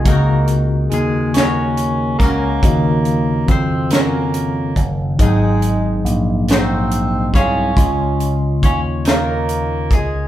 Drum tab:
HH |xxxxxx|xxxxxx|xxxxxx|xxxxxx|
SD |---o--|---o--|---o--|---o--|
BD |o----o|o-o--o|o----o|o-o--o|